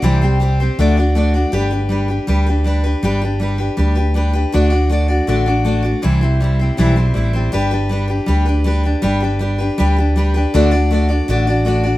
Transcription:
X:1
M:4/4
L:1/8
Q:1/4=160
K:G
V:1 name="Steel-string acoustic guitar"
[C,E,G,CGc] [G,CGc] [G,CGc] [G,CGc] [D,A,DFd] [DFd] [A,DFd] [DFd] | [G,DGB] [DGB] [G,DGB] [DGB] [G,DGB] [DGB] [G,DGB] [DGB] | [G,DGB] [DGB] [G,DGB] [DGB] [G,DGB] [DGB] [G,DGB] [DGB] | [D,A,DFd] [DFd] [A,DFd] [DFd] [D,A,DFd] [DFd] [A,DFd] [DFd] |
[C,E,G,CEc] [G,CEc] [G,CEc] [G,CEc] [C,E,G,CEc] [G,CEc] [G,CEc] [G,CEc] | [G,DGB] [DGB] [G,DGB] [DGB] [G,DGB] [DGB] [G,DGB] [DGB] | [G,DGB] [DGB] [G,DGB] [DGB] [G,DGB] [DGB] [G,DGB] [DGB] | [D,A,DFd] [DFd] [A,DFd] [DFd] [D,A,DFd] [DFd] [A,DFd] [DFd] |]
V:2 name="Fretless electric bass" clef=bass
C,,4 D,,4 | G,,,4 D,,4 | G,,,4 D,,4 | D,,4 A,,,4 |
C,,4 B,,,2 A,,,2 | G,,,4 D,,4 | G,,,4 D,,4 | D,,4 A,,,4 |]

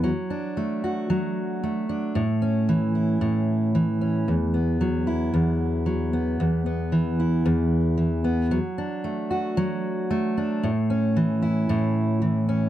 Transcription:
X:1
M:4/4
L:1/8
Q:"Swing 16ths" 1/4=113
K:A
V:1 name="Steel-string acoustic guitar"
F, D A, F F,2 A, D | A,, C E, E A,,2 E, C | E,, B, F, E E,,2 F, B, | E,, B, E, E E,,2 E, B, |
F, D A, F F,2 A, D | A,, C E, E A,,2 E, C |]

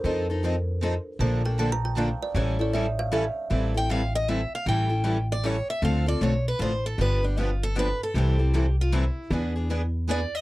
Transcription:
X:1
M:3/4
L:1/16
Q:"Swing" 1/4=155
K:Aphr
V:1 name="Kalimba"
c8 z4 | a2 g2 (3a2 b2 g2 f2 d2 | ^c2 d2 e2 f2 e2 z2 | [K:Am] z12 |
z12 | z12 | z12 | z12 |
z12 |]
V:2 name="Steel-string acoustic guitar"
z12 | z12 | z12 | [K:Am] z2 g2 f2 ^d2 e2 f2 |
g6 d2 ^c2 e2 | f2 d2 ^c2 B2 =c2 A2 | B2 D2 F2 A2 B2 A2 | G6 F2 E4 |
z8 d2 ^d2 |]
V:3 name="Steel-string acoustic guitar"
[F,C_EA]2 [CEA]2 [F,CEA] z3 [F,CEA] z3 | [D,F,B,DA]2 [B,DA]2 [D,F,B,DA] z3 [D,F,B,DA] z3 | [E,G,^CEA]2 [CEA]2 [E,G,CEA] z3 [E,G,CEA] z3 | [K:Am] [E,G,CEA]2 [CEA]2 [E,G,CEA] z3 [E,G,CEA] z3 |
[E,G,^CEA]2 [CEA]2 [E,G,CEA] z3 [E,G,CEA] z3 | [D,A,CFA]2 [CFA]2 [D,A,CFA] z3 [D,A,CFA] z3 | [D,F,B,DG]2 [B,DG]2 [D,F,B,DG] z3 [D,F,B,DG] z3 | [C,E,G,CEA]2 [G,CEA]2 [C,E,G,CEA] z3 [C,E,G,CEA] z3 |
[E,B,D^G]2 [B,DG]2 [E,B,DG] z3 [E,B,DG] z3 |]
V:4 name="Steel-string acoustic guitar"
[F,C_EA]2 z2 [F,CEA] z3 [F,CEA] z3 | [D,F,B,DA]2 z2 [D,F,B,DA] z3 [D,F,B,DA] z3 | [E,G,^CEA]2 z2 [E,G,CEA] z3 [E,G,CEA] z3 | [K:Am] [E,G,CEA]2 z2 [E,G,CEA] z3 [E,G,CEA] z3 |
[E,G,^CEA]2 z2 [E,G,CEA] z3 [E,G,CEA] z3 | [D,F,CDA]2 z2 [D,F,CDA] z3 [D,F,CDA] z3 | [D,F,B,DG]2 z2 [D,F,B,DG] z3 [D,F,B,DG] z3 | [C,E,G,CEA]2 z2 [C,E,G,CEA] z3 [C,E,G,CEA] z3 |
[E,B,D^GB]2 z2 [E,B,DGB] z3 [E,B,DGB] z3 |]
V:5 name="Upright bass" clef=bass
F,,12 | B,,,12 | A,,,12 | [K:Am] A,,,12 |
A,,,12 | D,,4 B,,,4 A,,,4 | G,,,12 | C,,12 |
E,,12 |]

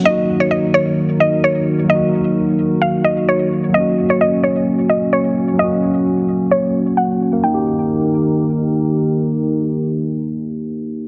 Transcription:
X:1
M:4/4
L:1/16
Q:1/4=130
K:Ebm
V:1 name="Synth pluck"
e3 d e2 d2 z2 e2 d2 z2 | e8 f2 e2 d2 z2 | e3 d e2 d2 z2 e2 d2 z2 | e8 d4 g2 z2 |
=g12 z4 | z16 |]
V:2 name="Analog synth pad"
[E,EGB]16- | [E,EGB]16 | [B,D]16- | [B,D]16 |
[E,E=GB]16- | [E,E=GB]16 |]
V:3 name="Tine electric piano"
[G,B,EG]16 | [G,B,EG]16 | [G,B,DG]16 | [G,B,DG]16 |
[B,E=G]16- | [B,E=G]16 |]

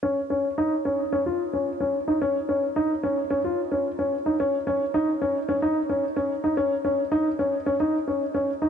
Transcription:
X:1
M:4/4
L:1/16
Q:1/4=110
K:Db
V:1 name="Upright piano"
D2 D2 E2 D2 D F2 D2 D2 E | D2 D2 E2 D2 D F2 D2 D2 E | D2 D2 E2 D2 D E2 D2 D2 E | D2 D2 E2 D2 D E2 D2 D2 E |]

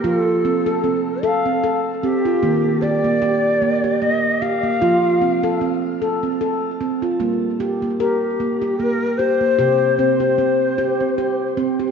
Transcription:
X:1
M:3/4
L:1/16
Q:"Swing 16ths" 1/4=75
K:Gm
V:1 name="Native American-style wooden flute"
A6 f2 z2 G2- | G2 d6 e2 f2- | f4 z8 | z4 G4 B2 c2- |
c2 c8 z2 |]
V:2 name="Handpan"
F2 C A C2 A C A2 C F | B,2 G B, G2 B, G B,2 G B, | F2 C A C2 A C A2 C F | B,2 G B, B2 B, G B,2 G B, |
G2 C G C2 G C G2 C G |]
V:3 name="Handpan" clef=bass
F,12 | E,12 | F,12 | G,12 |
C,12 |]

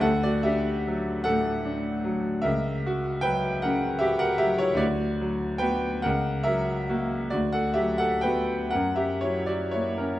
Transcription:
X:1
M:6/8
L:1/16
Q:3/8=48
K:F#phr
V:1 name="Grand piano"
[Af] [Fd] [Ge]4 [Af]6 | [^Ae]4 [Bg]2 [Af]2 [Ge] [Af] [Ge] [Ec] | [Fd]4 [Bg]2 [^Af]2 [Ae]4 | [Fd] [Af] [Ge] [Af] [Bg]2 [^Af] [Ge] [Ec] [Fd] [Ec] [CA] |]
V:2 name="Grand piano" clef=bass
D,,2 D2 F,2 A,,2 D2 F,2 | C,,2 F2 F,2 C,2 F2 F,2 | D,,2 F,2 [B,F]2 C,,2 F,2 [^A,F]2 | D,,2 F,2 [B,F]2 F,,2 F,2 ^A,2 |]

